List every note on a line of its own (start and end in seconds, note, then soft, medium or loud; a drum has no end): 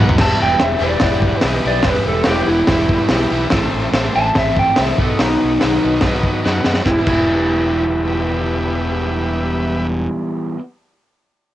0.00 0.17 B1 loud
0.00 0.18 B2 medium
0.00 0.18 D#3 medium
0.00 0.19 F#3 loud
0.00 0.19 B3 loud
0.00 0.19 D#4 loud
0.00 0.16 F#4 medium
0.00 0.16 B4 medium
0.00 0.16 F#5 loud
0.09 floor tom loud
0.18 0.34 E1 medium
0.18 0.60 E3 loud
0.18 0.61 G3 medium
0.18 0.61 B3 loud
0.18 0.62 E4 loud
0.18 0.57 G4 medium
0.18 0.57 B4 medium
0.18 0.58 E5 medium
0.18 0.40 A5 medium
0.18 kick loud
0.18 snare loud
0.18 crash loud
0.41 0.55 E1 medium
0.41 0.61 G5 medium
0.60 0.75 E1 medium
0.60 0.81 E3 medium
0.60 0.82 G3 medium
0.60 0.82 B3 medium
0.60 0.83 E4 medium
0.60 0.98 G4 medium
0.60 0.98 B4 medium
0.60 0.99 E5 medium
0.60 0.82 E5 medium
0.60 snare loud
0.60 open hi-hat medium
0.80 0.95 E1 medium
0.80 1.03 E3 medium
0.80 1.02 G3 medium
0.80 1.03 B3 medium
0.80 1.04 E4 medium
0.80 1.40 D5 medium
1.00 1.31 E1 medium
1.00 1.43 E3 medium
1.00 1.44 G3 medium
1.00 1.40 G4 medium
1.00 kick loud
1.00 snare loud
1.00 open hi-hat medium
1.04 1.45 B3 loud
1.04 1.46 E4 loud
1.04 1.41 B4 medium
1.04 1.41 F#5 medium
1.22 kick medium
1.40 1.58 B1 medium
1.40 1.81 G4 medium
1.40 1.63 B4 medium
1.40 snare loud
1.40 open hi-hat medium
1.44 1.64 E3 medium
1.44 1.64 G3 medium
1.44 1.64 B3 medium
1.44 1.66 E4 medium
1.44 1.82 B4 medium
1.44 1.82 D#5 medium
1.64 1.79 B1 medium
1.64 1.85 E3 medium
1.64 1.84 G3 medium
1.64 1.86 B3 medium
1.64 1.87 E4 medium
1.64 1.86 D5 medium
1.83 1.99 E1 medium
1.83 2.27 E3 medium
1.83 2.27 G3 medium
1.83 2.22 G4 medium
1.83 2.23 B4 medium
1.83 2.23 E5 medium
1.83 kick loud
1.83 snare loud
1.83 open hi-hat medium
1.87 2.28 B3 loud
1.87 2.29 E4 loud
1.87 2.06 B4 medium
2.05 2.20 E1 medium
2.05 2.27 A4 medium
2.24 2.41 E1 medium
2.24 2.47 E3 medium
2.24 2.64 G4 medium
2.24 2.63 B4 medium
2.24 2.64 F#5 medium
2.24 snare loud
2.24 open hi-hat medium
2.28 2.49 G3 medium
2.28 2.49 B3 medium
2.28 2.49 E4 medium
2.28 2.48 G4 medium
2.47 2.62 E1 medium
2.47 2.67 E3 medium
2.47 2.68 G3 medium
2.47 2.69 B3 medium
2.47 3.68 E4 medium
2.47 2.69 E4 medium
2.67 2.98 E1 medium
2.67 3.10 E3 medium
2.67 3.10 G3 loud
2.67 3.11 B3 loud
2.67 3.12 E4 loud
2.67 3.07 G4 medium
2.67 3.07 B4 medium
2.67 3.07 E5 medium
2.67 kick loud
2.67 snare loud
2.67 open hi-hat medium
2.89 kick medium
3.09 3.25 B1 medium
3.09 3.30 E3 medium
3.09 3.31 G3 medium
3.09 3.32 B3 loud
3.09 3.48 G4 medium
3.09 3.48 B4 medium
3.09 3.48 E5 medium
3.09 snare loud
3.09 open hi-hat medium
3.14 3.32 E4 medium
3.31 3.46 B1 medium
3.31 3.51 E3 medium
3.31 3.51 G3 medium
3.31 3.51 B3 medium
3.31 3.51 E4 medium
3.50 3.66 A1 medium
3.50 3.92 A2 medium
3.50 3.93 E3 loud
3.50 3.93 A3 medium
3.50 3.89 A4 medium
3.50 3.89 C5 medium
3.50 3.90 E5 medium
3.50 kick loud
3.50 snare loud
3.50 open hi-hat medium
3.54 3.94 C4 loud
3.54 3.94 E4 loud
3.73 3.88 A1 medium
3.92 4.07 A1 medium
3.92 4.13 A2 medium
3.92 4.15 E3 medium
3.92 4.14 A3 medium
3.92 4.15 C4 medium
3.92 4.15 E4 medium
3.92 4.32 A4 medium
3.92 4.32 C5 medium
3.92 4.32 E5 loud
3.92 snare loud
3.92 open hi-hat soft
4.14 4.30 A1 medium
4.14 4.33 A2 medium
4.14 4.34 E3 medium
4.14 4.35 A3 medium
4.14 4.36 C4 medium
4.14 4.36 E4 medium
4.14 4.35 A5 loud
4.33 4.65 A1 medium
4.33 4.75 A2 medium
4.33 4.76 E3 medium
4.33 4.77 A3 medium
4.33 4.78 C4 loud
4.33 4.78 E4 loud
4.33 4.72 A4 medium
4.33 4.72 C5 medium
4.33 4.72 E5 medium
4.33 kick loud
4.33 snare loud
4.33 open hi-hat medium
4.38 4.57 E5 loud
4.57 4.78 G5 loud
4.57 kick medium
4.75 4.93 C2 medium
4.75 4.96 A2 medium
4.75 4.97 E3 medium
4.75 4.97 A3 medium
4.75 4.97 C4 medium
4.75 4.97 A4 medium
4.75 4.97 C5 medium
4.75 4.97 E5 medium
4.75 snare loud
4.75 open hi-hat medium
4.80 4.98 E4 medium
4.80 4.99 E5 medium
4.95 5.12 B1 medium
4.95 5.18 B2 loud
4.95 5.53 F#4 medium
4.95 5.53 B4 medium
4.95 5.53 D#5 medium
4.95 kick loud
4.99 5.19 D#3 loud
4.99 5.19 F#3 loud
4.99 5.20 B3 loud
4.99 5.21 D#4 loud
4.99 5.19 A4 medium
5.19 5.35 B1 medium
5.19 5.59 B2 medium
5.19 5.60 D#3 medium
5.19 5.59 F#3 medium
5.19 5.61 B3 loud
5.19 6.01 D#4 medium
5.19 5.62 D#4 medium
5.19 snare loud
5.19 open hi-hat medium
5.43 5.57 B1 medium
5.59 5.81 B2 medium
5.59 5.82 D#3 medium
5.59 5.81 F#3 medium
5.59 5.82 B3 medium
5.59 5.83 D#4 medium
5.59 5.98 F#4 medium
5.59 5.98 B4 medium
5.59 5.98 D#5 medium
5.59 snare loud
5.59 open hi-hat medium
5.63 5.77 B1 medium
5.82 5.98 B1 medium
5.82 6.03 B2 medium
5.82 6.03 D#3 medium
5.82 6.04 F#3 medium
5.82 6.05 B3 medium
5.82 6.05 D#4 medium
6.01 6.32 B1 medium
6.01 6.43 B2 medium
6.01 6.43 D#3 medium
6.01 6.40 F#4 medium
6.01 6.40 B4 medium
6.01 6.41 D#5 loud
6.01 kick loud
6.01 snare loud
6.01 open hi-hat soft
6.06 6.44 F#3 loud
6.06 6.44 B3 loud
6.06 6.45 D#4 loud
6.23 kick medium
6.44 6.60 F#2 medium
6.44 6.63 B2 medium
6.44 6.64 D#3 medium
6.44 6.64 F#3 medium
6.44 6.65 B3 medium
6.44 6.66 D#4 medium
6.44 6.83 F#4 medium
6.44 6.83 B4 medium
6.44 6.83 F#5 medium
6.44 snare medium
6.64 6.80 F#2 medium
6.64 6.84 B2 medium
6.64 6.84 D#3 medium
6.64 6.85 F#3 medium
6.64 6.85 B3 medium
6.64 6.86 D#4 medium
6.64 snare medium
6.74 snare medium
6.85 6.97 E1 medium
6.85 7.06 E3 loud
6.85 7.08 G3 loud
6.85 7.10 B3 loud
6.85 6.99 E4 medium
6.85 9.87 G4 medium
6.85 9.88 B4 medium
6.85 9.87 E5 medium
6.85 kick loud
6.85 snare medium
6.89 7.10 E4 medium
7.06 10.06 E1 medium
7.06 10.57 E3 medium
7.06 10.58 G3 medium
7.06 10.07 E4 loud
7.06 kick medium
7.06 crash medium
7.10 10.61 B3 medium
7.10 10.60 E4 loud